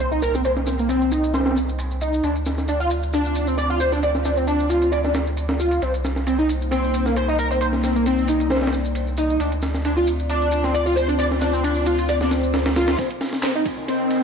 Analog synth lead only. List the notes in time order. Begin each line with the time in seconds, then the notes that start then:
0.11 D#4
0.22 A#4
0.35 C4
0.45 C5
0.67 C4
0.79 A#3
0.89 C4
1.11 D#4
1.34 C5
1.46 C4
2.01 D#4
2.23 D4
2.68 D4
2.80 F4
3.13 D4
3.47 C4
3.58 D5
3.70 F4
3.80 C5
3.92 D4
4.03 D5
4.25 D4
4.37 C4
4.47 D4
4.69 F4
4.92 D5
5.04 D4
5.59 F4
5.82 C4
6.27 C4
6.39 D#4
6.71 C4
7.06 A#3
7.17 C5
7.28 D#4
7.39 A#4
7.51 C4
7.61 C5
7.84 C4
7.96 A#3
8.06 C4
8.29 D#4
8.51 C5
8.63 C4
9.18 D#4
9.40 D4
9.85 D4
9.97 F4
10.30 D4
10.64 C4
10.74 D5
10.86 F4
10.96 C5
11.08 D4
11.19 D5
11.41 D4
11.53 C4
11.63 D4
11.86 F4
12.09 D5
12.21 D4
12.76 F4
12.98 C4
13.43 C4
13.55 D#4
13.88 C4